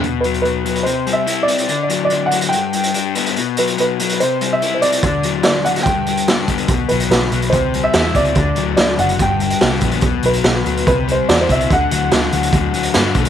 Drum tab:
HH |x-xxx-xxx-x-x-xx|x-x-x-xxx-xxx-xx|x-xxx-xxx-x-x-xx|x-x-x-xxx-xxx-xx|
SD |----------------|----------------|----------------|----o--o----o---|
BD |----------------|----------------|----------------|o-------o-----o-|

HH |x-xxx-xxx-x-x-xx|x-x-x-xxx-xxx-xx|x-xxx-xxx-x-x-xx|x-x-x-xxx-xxx-xx|
SD |----o-------o---|----o-------o---|----o-------o---|----o-------o---|
BD |o-------o-----o-|o-------o-----o-|o-------o-----o-|o-------o-----o-|